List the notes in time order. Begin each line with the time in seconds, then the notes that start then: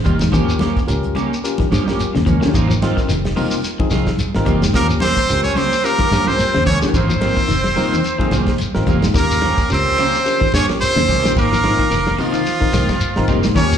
0.04 F1 D#3 G3 A#3 F4, kick, closed hi-hat, low conga, shekere
0.19 G#2, snare, closed hi-hat, low conga, shekere
0.32 D#2 D#3 F3 A#3 C#4 F4 G4 A#4, kick, closed hi-hat, low conga, shekere
0.49 shekere
0.59 F3 A#3 C#4 G4, snare, closed hi-hat, high conga
0.77 muted fingered electric bass stroke, kick, snare, closed hi-hat, shekere
0.87 C#2 C#4 F4 G4 A#4, closed hi-hat, shekere
1.03 closed hi-hat, high conga
1.15 C#3 A#3 C#4 G4, closed hi-hat, high conga, shekere
1.33 shekere
1.44 C#4 F4 G4 A#4, closed hi-hat, shekere
1.58 D#3, kick, snare, closed hi-hat, high conga
1.71 G2 F3 A#3 C#4 G4, kick, snare, closed hi-hat, shekere
1.85 A#3 C#4 F4 G4 A#4, snare, shekere
1.99 muted fingered electric bass stroke, closed hi-hat, high conga, shekere
2.15 D#2 C#3, snare, closed hi-hat
2.26 C#2 F3 A#3 C#4, muted clean electric guitar stroke, kick, closed hi-hat, low conga, shekere
2.41 D#3 C#4 F4 G4 A#4, snare, shekere
2.54 G#1 D#3 A#3 C4 F4, kick, closed hi-hat, low conga, shekere
2.69 F3, closed hi-hat, shekere
2.81 D#3 C4 D#4 F4 A#4, snare, closed hi-hat, high conga
2.97 D#3, muted fingered electric bass stroke, kick, snare, closed hi-hat, shekere
3.09 F1 D#3, snare, closed hi-hat, shekere
3.25 snare, closed hi-hat, high conga
3.35 C3 D#3 A#3 C4 D#4 F4 A#4, open hi-hat, high conga, shekere
3.51 shekere
3.64 snare, closed hi-hat, shekere
3.79 D#3 C4 D#4 F4 G#4, kick, high conga
3.90 C2 D#3 F3 C4 F4, muted clean electric guitar stroke, kick, snare, closed hi-hat, shekere
4.07 kick, snare, closed hi-hat, shekere
4.18 muted fingered electric bass stroke, closed hi-hat, high conga, shekere
4.35 G#1 C4 D#4 F4 A#4, snare
4.45 F1 D#3 G3 A#3 C4 F4, kick, closed hi-hat, low conga, shekere
4.62 G#2, snare, closed hi-hat, shekere
4.74 D#2 D#3 F3 A#3 C#4 F4 G4 A#4, muted clean electric guitar stroke, kick, closed hi-hat, low conga, shekere
4.90 shekere
5.00 F3 A#3 C4 C#4 G4 C5, snare, closed hi-hat, high conga
5.17 muted fingered electric bass stroke, kick, closed hi-hat, high conga, shekere
5.28 C#2 C#4 F4 G4 A#4, closed hi-hat, shekere
5.43 C#4 C#5, closed hi-hat, high conga
5.55 C#3 F3 A#3 C4 C#4 G4 C5, snare, closed hi-hat, high conga, shekere
5.73 snare, shekere
5.84 A#3 C#4 F4 G4 A#4, closed hi-hat, shekere
5.98 D#3 A#3 C#4 G4, kick, closed hi-hat, high conga
6.11 G2 F3 A#3 C#4 G4, kick, snare, closed hi-hat, shekere
6.27 A#3 C4 C#4 F4 G4 A#4 C5, snare, shekere
6.39 muted fingered electric bass stroke, closed hi-hat, high conga, shekere
6.54 D#2 C#3, snare, closed hi-hat
6.66 C#2 F3 A#3 G4 C#5, muted clean electric guitar stroke, kick, closed hi-hat, high conga, low conga, shekere
6.70 C#4
6.82 D#3 C#4 F4 G4 A#4, snare, shekere
6.94 G#1 D#3 A#3 C4 F4 C5, kick, closed hi-hat, low conga, shekere
7.09 F3, closed hi-hat, shekere
7.21 D#3 A#3 C4 D#4 F4 A#4, snare, closed hi-hat, high conga
7.37 D#3, muted fingered electric bass stroke, kick, snare, closed hi-hat, shekere
7.48 F1 D#3, closed hi-hat, shekere
7.64 snare, closed hi-hat, high conga
7.76 C3 D#3 A#3 C4 D#4 F4 A#4, open hi-hat, high conga, shekere
7.93 D#3, low conga, shekere
8.04 closed hi-hat, shekere
8.18 D#3 A#3 C4 D#4 F4 G#4, kick, snare, high conga
8.31 C2 D#3 F3 A#3 C4 F4, kick, snare, closed hi-hat, shekere
8.46 kick, snare, closed hi-hat, shekere
8.58 muted fingered electric bass stroke, closed hi-hat, high conga, shekere
8.74 G#1 C4 D#4 F4 A#4, snare
8.86 F1 D#3 G3 A#3 C4 F4, kick, closed hi-hat, high conga, low conga, shekere
9.02 G#2, snare, closed hi-hat, shekere
9.14 D#2 D#3 A#3 C#4 F4 G4 A#4, muted clean electric guitar stroke, kick, ride bell, shekere
9.19 A#3
9.31 snare, shekere
9.42 F3 A#3 C#4 G4, snare, ride bell
9.58 muted fingered electric bass stroke, kick, snare, ride bell, shekere
9.70 C#2 C#4 F4 G4 A#4 C5, ride bell, shekere
9.74 C4
9.98 C#3 F3 A#3 C#4 G4, snare, ride bell, shekere
10.14 snare, shekere
10.25 C#4 F4 G4 A#4, snare, ride bell, shekere
10.40 D#3, kick
10.53 G2 F3 A#3 C#4 G4 C#5, kick, snare, ride bell, shekere
10.69 C#4 F4 G4 A#4, snare, ride bell, shekere
10.81 C4 C5, muted fingered electric bass stroke, ride bell, shekere
10.96 D#2 C#3, snare
11.08 C#2 F3 A#3 C#4 G4, kick, ride bell, shekere
11.24 A#1 D#3 C#4 F4 G4 A#4, snare, shekere
11.36 G#1 D#3 A#3 C4 F4 A#4, kick, ride bell, shekere
11.52 F3, snare, shekere
11.63 D#3 A#3 C4 D#4 F4 A#4, snare, ride bell
11.79 D#3, kick, shekere
11.91 F1 D#3, snare, ride bell, shekere
12.07 snare
12.18 C3 D#3 F3 A#3 C4 D#4 F4 A#4, open hi-hat, shekere
12.33 D#3, ride bell, shekere
12.46 snare, ride bell, shekere
12.60 D#3 C4 D#4 F4 A#4, kick
12.73 C2 D#3 F3 A#3 C4 F4, kick, snare, ride bell, shekere
12.89 kick, snare, ride bell, shekere
13.00 muted fingered electric bass stroke, ride bell, shekere
13.16 G#1 C4 D#4 F4 A#4, snare
13.28 F1 D#3 G3 A#3 C4 F4, kick, ride bell, shekere
13.43 G#2, snare, shekere
13.56 D#2 D#3 F3 A#3 C#4 F4 G4 A#4 C#5, kick, ride bell, shekere
13.72 shekere